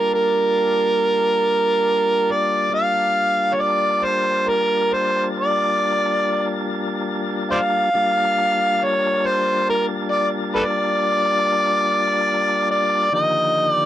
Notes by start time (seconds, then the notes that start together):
Already playing: G3 A#3 D4 F4 A#4 A5
0.14 A#4
2.31 D5
2.71 G3 A#3 D4 F4 A5
2.75 F5
3.53 C#5
3.61 D5
4.04 C5
4.48 A#4
4.93 C5
5.37 D5
7.52 C5 D5 F5
7.94 G3 A#3 D4 F4 A5
8.84 C#5
9.26 C5
9.70 A#4
10.11 D5
10.55 A4 B4 D5
12.71 D5
13.12 D3 D#3 F3 A#3 G4 D#5
13.70 D5